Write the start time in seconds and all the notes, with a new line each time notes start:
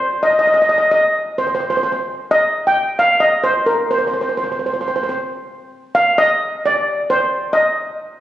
Already playing: C5
0.23 D#5
0.31 D#5
0.39 D#5
0.47 D#5
0.54 D#5
0.62 D#5
0.69 D#5
0.78 D#5
0.91 D#5
1.38 C5
1.47 C5
1.55 C5
1.61 C5
1.70 C5
1.77 C5
1.83 C5
1.92 C5
2.31 D#5
2.67 G5
2.99 F5
3.20 D#5
3.44 C5
3.66 A#4
3.91 C5
3.99 C5
4.07 C5
4.14 C5
4.21 C5
4.29 C5
4.37 C5
4.44 C5
4.52 C5
4.59 C5
4.66 C5
4.74 C5
4.81 C5
4.88 C5
4.96 C5
5.03 C5
5.09 C5
5.95 F5
6.18 D#5
6.66 D5
7.10 C5
7.53 D#5